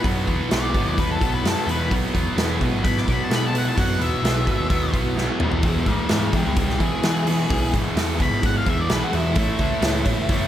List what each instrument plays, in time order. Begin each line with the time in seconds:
0.01 picked electric bass F#2, clean electric guitar B2 E3 B3 E4 F#4 B4, distorted electric guitar B2 F#3 B3, kick, open hi-hat
0.26 picked electric bass E2, distorted electric guitar B2 F#3, clean electric guitar B3 E4 F#4 B4, kick, open hi-hat
0.30 distorted electric guitar B3
0.49 picked electric bass B1, distorted electric guitar B2, clean electric guitar B3 E4 F#4 B4, snare, open hi-hat
0.53 distorted electric guitar F#3 B3, lead electric guitar D5
0.72 picked electric bass G#1, distorted electric guitar B2 F#3, clean electric guitar B2 B3 E4 F#4 B4, kick, open hi-hat
0.77 distorted electric guitar B3
0.86 picked electric bass D#2
0.96 distorted electric guitar B2 F#3 B3, clean electric guitar B3 E4 F#4 B4, lead electric guitar B4, kick, open hi-hat
1.12 lead electric guitar A4
1.19 picked electric bass B1, distorted electric guitar B2 F#3, clean electric guitar B3 E4 F#4 B4, kick, open hi-hat
1.24 distorted electric guitar B3
1.34 lead electric guitar B4
1.43 picked electric bass F#2, clean electric guitar B2 E3 B3 E4 F#4 B4, distorted electric guitar B2 F#3, snare, open hi-hat
1.47 distorted electric guitar B3, lead electric guitar A4
1.66 picked electric bass E2, distorted electric guitar B2 F#3, clean electric guitar B3 E4 F#4 B4, lead electric guitar B4, open hi-hat
1.70 distorted electric guitar B3
1.89 picked electric bass B1, clean electric guitar B2 E3 B3 E4 F#4 B4, distorted electric guitar B2 F#3 B3, kick, open hi-hat
2.13 picked electric bass E2, distorted electric guitar B2 F#3 B3, clean electric guitar B3 E4 F#4 B4, kick, open hi-hat
2.36 picked electric bass E2, distorted electric guitar B2 F#3 B3, clean electric guitar B3 E4 F#4 B4, snare, open hi-hat
2.59 distorted electric guitar B2 F#3 B3, picked electric bass B2, clean electric guitar B2 E3 B3 E4 F#4 B4, kick, open hi-hat
2.72 picked electric bass G#1
2.83 distorted electric guitar B2 F#3 B3, clean electric guitar B3 E4 F#4 B4, lead electric guitar B5, kick, open hi-hat
2.98 lead electric guitar D6, snare
3.06 distorted electric guitar B2 F#3 B3, picked electric bass B2, clean electric guitar B3 E4 F#4 B4, kick, open hi-hat
3.12 lead electric guitar B5
3.24 lead electric guitar A5
3.29 clean electric guitar B2 E3 B3 E4 F#4 B4, picked electric bass B2, distorted electric guitar B2 F#3 B3, snare, open hi-hat
3.35 lead electric guitar B5
3.47 lead electric guitar A5
3.53 distorted electric guitar B2 F#3 B3, clean electric guitar B3 E4 F#4 B4, open hi-hat
3.58 lead electric guitar F#5
3.68 lead electric guitar A5
3.75 picked electric bass F#2, clean electric guitar B2 E3 B3 E4 F#4 B4, distorted electric guitar B2 F#3 B3, lead electric guitar F#5, kick, open hi-hat
3.98 picked electric bass E2, distorted electric guitar B2 F#3 B3, clean electric guitar B3 E4 F#4 B4, lead electric guitar E5, open hi-hat
4.22 picked electric bass B1, distorted electric guitar B2 F#3 B3, clean electric guitar B3 E4 F#4, snare, open hi-hat
4.26 clean electric guitar B4
4.46 picked electric bass G#1, distorted electric guitar B2 F#3 B3, clean electric guitar B2 B3 E4 F#4 B4, kick, open hi-hat
4.59 picked electric bass D#2
4.69 distorted electric guitar B2 F#3 B3, clean electric guitar B3 E4 F#4 B4, kick, open hi-hat
4.92 picked electric bass B1, distorted electric guitar B2 F#3 B3, clean electric guitar B3 E4 F#4 B4, kick, open hi-hat
5.15 picked electric bass B1, clean electric guitar B2 E3 B3 E4 F#4 B4, distorted electric guitar B2 F#3 B3, snare
5.40 distorted electric guitar E2 B2 E3, picked electric bass E2, clean electric guitar E3 F#3 B3 E4 G#4, lead electric guitar G#4 E5, mid tom
5.51 floor tom
5.62 distorted electric guitar E2 B2 E3, picked electric bass E2, clean electric guitar E3 F#3 B3 E4 G#4, lead electric guitar G#4, kick, open hi-hat
5.66 lead electric guitar E5
5.86 distorted electric guitar E2 B2 E3, picked electric bass G#2, clean electric guitar B3 E4 G#4, lead electric guitar F#4 D5, kick, open hi-hat
6.09 distorted electric guitar E2 B2 E3, picked electric bass G#2, clean electric guitar F#3 B3 E4 G#4, lead electric guitar F#4 D5, snare, open hi-hat
6.33 distorted electric guitar E2 B2 E3, picked electric bass E3, clean electric guitar E3 F#3 B3 E4 G#4, lead electric guitar D4 B4, kick, open hi-hat
6.45 picked electric bass C#2
6.55 distorted electric guitar E2 B2 E3, clean electric guitar F#3 B3 E4 G#4, lead electric guitar D4 B4, kick, open hi-hat
6.70 snare
6.79 distorted electric guitar E2 B2 E3, picked electric bass E3, clean electric guitar B3 E4 G#4, lead electric guitar G#4, kick, open hi-hat
7.02 distorted electric guitar E2 B2 E3, clean electric guitar E3 F#3 B3 E4 G#4, picked electric bass E3, snare, open hi-hat
7.26 distorted electric guitar E2 B2 E3, clean electric guitar B3 E4 G#4, open hi-hat
7.49 picked electric bass B1, distorted electric guitar E2 B2 E3, clean electric guitar E3 F#3 B3 E4 G#4, kick, open hi-hat
7.72 distorted electric guitar E2 B2 E3, picked electric bass G#2, clean electric guitar B3 E4 G#4, kick, open hi-hat
7.95 picked electric bass E2, distorted electric guitar E2 B2 E3, clean electric guitar F#3 B3 E4 G#4, snare, open hi-hat
8.18 picked electric bass C#2, distorted electric guitar E2 B2 E3, clean electric guitar E3 F#3 B3 E4 G#4, kick, open hi-hat
8.22 lead electric guitar B5
8.32 picked electric bass G#2
8.42 distorted electric guitar E2 B2 E3, clean electric guitar F#3 B3 E4 G#4, kick, open hi-hat
8.46 lead electric guitar F#5
8.57 lead electric guitar F5
8.64 distorted electric guitar E2 B2 E3, picked electric bass E2, clean electric guitar B3 E4 G#4, kick, open hi-hat
8.70 lead electric guitar E5
8.80 lead electric guitar D5
8.87 picked electric bass B1, distorted electric guitar E2 B2, clean electric guitar E3 F#3 B3 E4 G#4, snare, open hi-hat
8.91 distorted electric guitar E3, lead electric guitar B4
9.04 lead electric guitar F#4
9.11 distorted electric guitar E2 B2 E3, picked electric bass E2, clean electric guitar B3 E4 G#4, open hi-hat
9.15 lead electric guitar E4
9.34 picked electric bass A1, distorted electric guitar A2 E3 A3, clean electric guitar A3 B3 E4 A4 C#5, lead electric guitar E4, kick, open hi-hat
9.58 picked electric bass C#2, distorted electric guitar A2 E3 A3, clean electric guitar E4 A4 C#5, kick, open hi-hat
9.81 picked electric bass C#2, distorted electric guitar A2 E3 A3, clean electric guitar B3 E4 A4 C#5, snare, open hi-hat
10.05 picked electric bass A2, distorted electric guitar A2 E3 A3, clean electric guitar A3 B3 E4 A4 C#5, kick, open hi-hat
10.18 picked electric bass F#1
10.29 distorted electric guitar A2 E3 A3, clean electric guitar B3 E4 A4 C#5, kick, open hi-hat